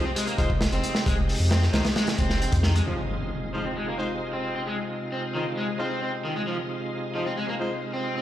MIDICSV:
0, 0, Header, 1, 7, 480
1, 0, Start_track
1, 0, Key_signature, -4, "minor"
1, 0, Tempo, 451128
1, 1127, Time_signature, 4, 2, 24, 8
1, 8744, End_track
2, 0, Start_track
2, 0, Title_t, "Horn section"
2, 0, Program_c, 0, 61
2, 403, Note_on_c, 0, 72, 95
2, 404, Note_on_c, 0, 63, 78
2, 404, Note_on_c, 0, 65, 84
2, 405, Note_on_c, 0, 56, 87
2, 535, Note_off_c, 0, 63, 0
2, 535, Note_off_c, 0, 65, 0
2, 535, Note_off_c, 0, 72, 0
2, 536, Note_off_c, 0, 56, 0
2, 1844, Note_on_c, 0, 56, 78
2, 1844, Note_on_c, 0, 63, 70
2, 1844, Note_on_c, 0, 72, 82
2, 1846, Note_on_c, 0, 65, 70
2, 1975, Note_off_c, 0, 56, 0
2, 1975, Note_off_c, 0, 63, 0
2, 1975, Note_off_c, 0, 72, 0
2, 1976, Note_off_c, 0, 65, 0
2, 3765, Note_on_c, 0, 56, 73
2, 3765, Note_on_c, 0, 72, 77
2, 3766, Note_on_c, 0, 63, 63
2, 3766, Note_on_c, 0, 65, 63
2, 3896, Note_off_c, 0, 56, 0
2, 3896, Note_off_c, 0, 63, 0
2, 3896, Note_off_c, 0, 65, 0
2, 3896, Note_off_c, 0, 72, 0
2, 4243, Note_on_c, 0, 56, 81
2, 4243, Note_on_c, 0, 63, 78
2, 4243, Note_on_c, 0, 72, 89
2, 4244, Note_on_c, 0, 65, 73
2, 4375, Note_off_c, 0, 56, 0
2, 4375, Note_off_c, 0, 63, 0
2, 4375, Note_off_c, 0, 65, 0
2, 4375, Note_off_c, 0, 72, 0
2, 5683, Note_on_c, 0, 63, 66
2, 5684, Note_on_c, 0, 56, 71
2, 5684, Note_on_c, 0, 65, 63
2, 5684, Note_on_c, 0, 72, 78
2, 5815, Note_off_c, 0, 56, 0
2, 5815, Note_off_c, 0, 63, 0
2, 5815, Note_off_c, 0, 65, 0
2, 5815, Note_off_c, 0, 72, 0
2, 6163, Note_on_c, 0, 56, 80
2, 6163, Note_on_c, 0, 63, 74
2, 6163, Note_on_c, 0, 65, 73
2, 6164, Note_on_c, 0, 72, 90
2, 6295, Note_off_c, 0, 56, 0
2, 6295, Note_off_c, 0, 63, 0
2, 6295, Note_off_c, 0, 65, 0
2, 6295, Note_off_c, 0, 72, 0
2, 7605, Note_on_c, 0, 56, 73
2, 7605, Note_on_c, 0, 65, 65
2, 7606, Note_on_c, 0, 63, 65
2, 7606, Note_on_c, 0, 72, 82
2, 7736, Note_off_c, 0, 56, 0
2, 7736, Note_off_c, 0, 63, 0
2, 7736, Note_off_c, 0, 65, 0
2, 7736, Note_off_c, 0, 72, 0
2, 8084, Note_on_c, 0, 72, 96
2, 8085, Note_on_c, 0, 63, 78
2, 8086, Note_on_c, 0, 65, 73
2, 8087, Note_on_c, 0, 56, 81
2, 8215, Note_off_c, 0, 72, 0
2, 8216, Note_off_c, 0, 63, 0
2, 8216, Note_off_c, 0, 65, 0
2, 8217, Note_off_c, 0, 56, 0
2, 8744, End_track
3, 0, Start_track
3, 0, Title_t, "Tonewheel organ"
3, 0, Program_c, 1, 16
3, 0, Note_on_c, 1, 48, 65
3, 0, Note_on_c, 1, 56, 62
3, 0, Note_on_c, 1, 63, 59
3, 0, Note_on_c, 1, 67, 73
3, 3003, Note_off_c, 1, 48, 0
3, 3004, Note_off_c, 1, 56, 0
3, 3004, Note_off_c, 1, 63, 0
3, 3007, Note_off_c, 1, 67, 0
3, 3051, Note_on_c, 1, 48, 60
3, 3053, Note_on_c, 1, 65, 70
3, 3055, Note_on_c, 1, 56, 56
3, 3056, Note_on_c, 1, 63, 57
3, 8744, Note_off_c, 1, 48, 0
3, 8744, Note_off_c, 1, 56, 0
3, 8744, Note_off_c, 1, 63, 0
3, 8744, Note_off_c, 1, 65, 0
3, 8744, End_track
4, 0, Start_track
4, 0, Title_t, "Overdriven electric guitar"
4, 0, Program_c, 2, 29
4, 52, Note_on_c, 2, 60, 100
4, 102, Note_off_c, 2, 60, 0
4, 171, Note_on_c, 2, 56, 101
4, 258, Note_off_c, 2, 56, 0
4, 292, Note_on_c, 2, 58, 99
4, 342, Note_off_c, 2, 58, 0
4, 771, Note_on_c, 2, 60, 77
4, 997, Note_off_c, 2, 60, 0
4, 1009, Note_on_c, 2, 60, 95
4, 1061, Note_off_c, 2, 60, 0
4, 1127, Note_on_c, 2, 56, 94
4, 1216, Note_off_c, 2, 56, 0
4, 1610, Note_on_c, 2, 60, 80
4, 1697, Note_off_c, 2, 60, 0
4, 1851, Note_on_c, 2, 51, 99
4, 1937, Note_off_c, 2, 51, 0
4, 2089, Note_on_c, 2, 56, 107
4, 2177, Note_off_c, 2, 56, 0
4, 2332, Note_on_c, 2, 60, 79
4, 2558, Note_off_c, 2, 60, 0
4, 2570, Note_on_c, 2, 60, 84
4, 2657, Note_off_c, 2, 60, 0
4, 2810, Note_on_c, 2, 51, 104
4, 2897, Note_off_c, 2, 51, 0
4, 2931, Note_on_c, 2, 56, 98
4, 2982, Note_off_c, 2, 56, 0
4, 3051, Note_on_c, 2, 53, 87
4, 3138, Note_off_c, 2, 53, 0
4, 3768, Note_on_c, 2, 53, 66
4, 3856, Note_off_c, 2, 53, 0
4, 3886, Note_on_c, 2, 60, 90
4, 3939, Note_off_c, 2, 60, 0
4, 4009, Note_on_c, 2, 56, 92
4, 4097, Note_off_c, 2, 56, 0
4, 4131, Note_on_c, 2, 58, 89
4, 4182, Note_off_c, 2, 58, 0
4, 4609, Note_on_c, 2, 60, 73
4, 4837, Note_off_c, 2, 60, 0
4, 4851, Note_on_c, 2, 60, 90
4, 4902, Note_off_c, 2, 60, 0
4, 4970, Note_on_c, 2, 56, 89
4, 5057, Note_off_c, 2, 56, 0
4, 5449, Note_on_c, 2, 60, 77
4, 5537, Note_off_c, 2, 60, 0
4, 5689, Note_on_c, 2, 51, 92
4, 5776, Note_off_c, 2, 51, 0
4, 5930, Note_on_c, 2, 56, 96
4, 6017, Note_off_c, 2, 56, 0
4, 6165, Note_on_c, 2, 60, 71
4, 6394, Note_off_c, 2, 60, 0
4, 6406, Note_on_c, 2, 60, 77
4, 6495, Note_off_c, 2, 60, 0
4, 6648, Note_on_c, 2, 51, 98
4, 6736, Note_off_c, 2, 51, 0
4, 6766, Note_on_c, 2, 56, 90
4, 6819, Note_off_c, 2, 56, 0
4, 6888, Note_on_c, 2, 53, 91
4, 6976, Note_off_c, 2, 53, 0
4, 7608, Note_on_c, 2, 53, 71
4, 7696, Note_off_c, 2, 53, 0
4, 7727, Note_on_c, 2, 60, 94
4, 7780, Note_off_c, 2, 60, 0
4, 7843, Note_on_c, 2, 56, 94
4, 7934, Note_off_c, 2, 56, 0
4, 7965, Note_on_c, 2, 58, 92
4, 8019, Note_off_c, 2, 58, 0
4, 8443, Note_on_c, 2, 60, 74
4, 8673, Note_off_c, 2, 60, 0
4, 8685, Note_on_c, 2, 60, 89
4, 8739, Note_off_c, 2, 60, 0
4, 8744, End_track
5, 0, Start_track
5, 0, Title_t, "Sub bass"
5, 0, Program_c, 3, 38
5, 408, Note_on_c, 3, 29, 81
5, 716, Note_off_c, 3, 29, 0
5, 768, Note_on_c, 3, 29, 94
5, 855, Note_off_c, 3, 29, 0
5, 1132, Note_on_c, 3, 29, 101
5, 1438, Note_off_c, 3, 29, 0
5, 1487, Note_on_c, 3, 41, 97
5, 1795, Note_off_c, 3, 41, 0
5, 1844, Note_on_c, 3, 36, 85
5, 1934, Note_off_c, 3, 36, 0
5, 2324, Note_on_c, 3, 29, 85
5, 2634, Note_off_c, 3, 29, 0
5, 2687, Note_on_c, 3, 41, 94
5, 2995, Note_off_c, 3, 41, 0
5, 8744, End_track
6, 0, Start_track
6, 0, Title_t, "Impact"
6, 0, Program_c, 4, 103
6, 3045, Note_on_c, 4, 60, 66
6, 4966, Note_off_c, 4, 60, 0
6, 8744, End_track
7, 0, Start_track
7, 0, Title_t, "Drums"
7, 174, Note_on_c, 9, 42, 92
7, 280, Note_off_c, 9, 42, 0
7, 287, Note_on_c, 9, 42, 47
7, 393, Note_off_c, 9, 42, 0
7, 408, Note_on_c, 9, 42, 71
7, 409, Note_on_c, 9, 36, 86
7, 514, Note_off_c, 9, 42, 0
7, 515, Note_off_c, 9, 36, 0
7, 531, Note_on_c, 9, 36, 105
7, 638, Note_off_c, 9, 36, 0
7, 646, Note_on_c, 9, 38, 109
7, 655, Note_on_c, 9, 42, 88
7, 753, Note_off_c, 9, 38, 0
7, 762, Note_off_c, 9, 42, 0
7, 768, Note_on_c, 9, 42, 45
7, 875, Note_off_c, 9, 42, 0
7, 888, Note_on_c, 9, 42, 67
7, 995, Note_off_c, 9, 42, 0
7, 1008, Note_on_c, 9, 38, 57
7, 1115, Note_off_c, 9, 38, 0
7, 1131, Note_on_c, 9, 36, 118
7, 1139, Note_on_c, 9, 42, 82
7, 1238, Note_off_c, 9, 36, 0
7, 1245, Note_off_c, 9, 42, 0
7, 1373, Note_on_c, 9, 46, 81
7, 1480, Note_off_c, 9, 46, 0
7, 1605, Note_on_c, 9, 42, 84
7, 1606, Note_on_c, 9, 38, 111
7, 1712, Note_off_c, 9, 42, 0
7, 1713, Note_off_c, 9, 38, 0
7, 1727, Note_on_c, 9, 38, 48
7, 1834, Note_off_c, 9, 38, 0
7, 1845, Note_on_c, 9, 42, 72
7, 1850, Note_on_c, 9, 38, 107
7, 1952, Note_off_c, 9, 42, 0
7, 1956, Note_off_c, 9, 38, 0
7, 1964, Note_on_c, 9, 42, 78
7, 1969, Note_on_c, 9, 38, 111
7, 2070, Note_off_c, 9, 42, 0
7, 2075, Note_off_c, 9, 38, 0
7, 2083, Note_on_c, 9, 42, 83
7, 2087, Note_on_c, 9, 38, 109
7, 2189, Note_off_c, 9, 42, 0
7, 2193, Note_off_c, 9, 38, 0
7, 2202, Note_on_c, 9, 42, 78
7, 2212, Note_on_c, 9, 38, 100
7, 2308, Note_off_c, 9, 42, 0
7, 2319, Note_off_c, 9, 38, 0
7, 2321, Note_on_c, 9, 42, 76
7, 2326, Note_on_c, 9, 36, 98
7, 2427, Note_off_c, 9, 42, 0
7, 2433, Note_off_c, 9, 36, 0
7, 2445, Note_on_c, 9, 38, 55
7, 2551, Note_off_c, 9, 38, 0
7, 2570, Note_on_c, 9, 42, 61
7, 2677, Note_off_c, 9, 42, 0
7, 2684, Note_on_c, 9, 42, 82
7, 2688, Note_on_c, 9, 36, 100
7, 2791, Note_off_c, 9, 42, 0
7, 2794, Note_off_c, 9, 36, 0
7, 2798, Note_on_c, 9, 38, 55
7, 2904, Note_off_c, 9, 38, 0
7, 2931, Note_on_c, 9, 42, 65
7, 3038, Note_off_c, 9, 42, 0
7, 8744, End_track
0, 0, End_of_file